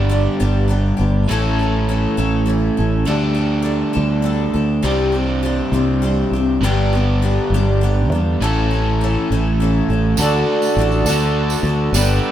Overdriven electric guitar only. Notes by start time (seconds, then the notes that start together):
Already playing: G2 D3 G3 B3 D4 G4
1.28 A2 E3 A3 C#4 A4
3.07 D3 A3 D4 G4
4.84 C3 G3 C4 D4 G4
6.61 G2 D3 G3 B3 D4 G4
8.41 A2 E3 A3 C#4 A4
10.17 D3 D4 F#4 A4
11.06 D3 D4 F#4 A4
11.94 G3 B3 D4 B4